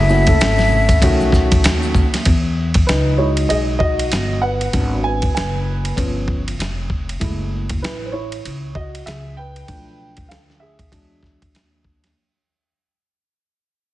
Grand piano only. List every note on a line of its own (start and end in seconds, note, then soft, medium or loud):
0.09 0.21 A3 medium
0.09 0.21 C#4 medium
0.09 0.22 E4 medium
0.09 0.22 F#4 medium
0.27 1.01 A3 medium
0.27 1.01 C#4 medium
0.27 1.03 E4 medium
0.27 1.03 A4 medium
1.02 2.03 D#3 medium
1.02 2.02 A3 medium
1.02 2.03 C#4 medium
1.02 2.03 F#4 loud
2.87 3.17 D#4 medium
2.87 3.16 B4 medium
3.18 4.07 F#3 medium
3.18 4.07 G#3 soft
3.18 4.08 D#4 medium
3.18 3.26 E4 medium
3.18 3.25 C#5 medium
3.49 3.58 G#4 medium
3.49 3.56 D#5 medium
3.79 4.38 F#4 medium
3.79 4.38 D#5 medium
4.42 5.01 B4 medium
4.42 5.00 F#5 medium
4.73 5.16 F#3 soft
4.73 5.17 B3 soft
4.73 5.17 D4 medium
5.04 5.34 B4 medium
5.04 5.33 G#5 loud
5.35 5.94 B4 medium
5.35 5.93 G#5 medium
5.96 6.40 F3 medium
5.96 6.40 B3 medium
5.96 6.40 C#4 medium
7.20 7.64 G#3 soft
7.20 7.64 A3 soft
7.20 7.64 E4 medium
7.82 8.06 E4 medium
7.82 8.06 B4 medium
8.06 8.13 C5 medium
8.12 8.71 E4 medium
8.12 8.77 C#5 medium
8.75 9.05 F#4 medium
8.75 9.04 D#5 medium
9.06 9.36 G#4 medium
9.06 9.35 E5 medium
9.37 10.27 B4 medium
9.37 10.33 G5 medium
9.67 10.88 F3 soft
9.67 10.88 A3 soft
9.67 10.88 D4 soft
10.29 10.38 A4 medium
10.29 10.36 F5 medium
10.60 11.81 G#4 medium
10.60 11.80 E5 medium
10.91 12.11 F#3 soft
10.91 12.12 G#3 soft
10.91 12.12 D4 medium